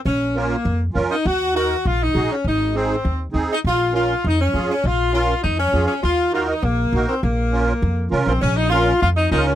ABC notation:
X:1
M:4/4
L:1/16
Q:1/4=201
K:Bbm
V:1 name="Accordion"
z4 [DFB]2 z6 [DFB]2 z2 | z4 [EGB]2 z6 [EGA]2 z2 | z4 [CEA]2 z6 [CEA]2 z2 | z4 [DFB]2 z6 [DFA]2 z2 |
z4 [DFB]2 z6 [DFA]2 z2 | z4 [EGB]2 z6 [EGB]2 z2 | z4 [DFB]2 z6 [DFB]2 z2 | z4 [DFB]2 z6 [DFB]2 z2 |]
V:2 name="Saxophone section"
D4 B,6 z4 E2 | G4 G4 F2 E4 D2 | E4 C6 z4 E2 | F4 F4 E2 D4 D2 |
F4 F4 E2 D4 D2 | F4 F3/2 F/2 E2 B,6 C2 | B,12 z2 C2 | D2 E2 F4 F2 E2 E2 D2 |]
V:3 name="Upright bass" clef=bass
B,,,8 F,,4 F,,2 z2 | E,,8 B,,,4 B,,,2 z2 | A,,,8 E,,4 E,,2 z2 | B,,,8 F,,4 F,,2 z2 |
B,,,8 F,,4 F,,2 z2 | E,,8 B,,,4 B,,,2 z2 | B,,,8 F,,4 C,,2 B,,,2 | B,,,8 F,,4 D,,4 |]